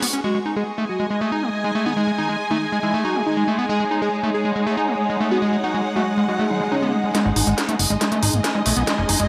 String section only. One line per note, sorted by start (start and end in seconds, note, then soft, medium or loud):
0.00 1.66 B3 medium
0.00 0.84 F#4 loud
0.00 0.24 F#5 medium
0.00 1.11 C#6 medium
0.24 9.28 G#3 medium
0.47 3.97 D#5 medium
0.55 9.28 D#4 medium
0.85 4.61 G#5 medium
3.84 7.15 C#5 medium
4.48 7.92 F#5 medium
7.87 9.28 D#5 medium
8.67 9.28 G#5 medium